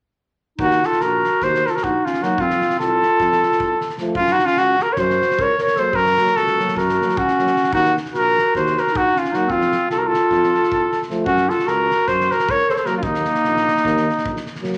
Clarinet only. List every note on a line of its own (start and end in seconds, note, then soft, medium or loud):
0.58 0.85 D#4 medium
0.84 1.03 F4 medium
1.02 1.43 F#4 medium
1.43 1.65 F#4 medium
1.65 1.77 F4 medium
1.65 1.70 F#4 medium
1.75 1.85 F#4 medium
1.84 2.07 D#4 medium
2.06 2.24 C#4 medium
2.22 2.43 D#4 medium
2.41 2.80 C4 medium
2.81 3.96 F4 medium
4.17 4.33 C#4 medium
4.32 4.45 D#4 medium
4.44 4.58 C#4 medium
4.58 4.79 C#4 medium
4.78 4.91 F#4 medium
4.89 4.99 A#4 medium
4.97 5.41 F#4 medium
5.39 5.57 A#4 medium
5.57 5.78 A#4 medium
5.76 5.95 A4 medium
5.93 6.32 F#4 medium
6.32 6.74 F#4 medium
6.76 7.20 F#4 medium
7.18 7.72 C#4 medium
7.73 7.94 D#4 medium
8.14 8.51 F#4 medium
8.55 8.75 F#4 medium
8.75 8.94 F#4 medium
8.92 9.15 D#4 medium
9.14 9.33 C#4 medium
9.31 9.49 D#4 medium
9.48 9.88 C4 medium
9.89 9.98 F4 medium
9.96 10.07 F#4 medium
10.06 11.09 F4 medium
11.26 11.50 C#4 medium
11.49 11.67 F4 medium
11.65 12.08 F#4 medium
12.08 12.30 F#4 medium
12.30 12.51 F#4 medium
12.49 12.72 A#4 medium
12.70 12.74 A4 medium
12.70 12.80 A#4 medium
12.78 12.88 A4 medium
12.86 12.97 F#4 medium
12.99 14.46 A#3 medium
12.99 13.04 C#4 soft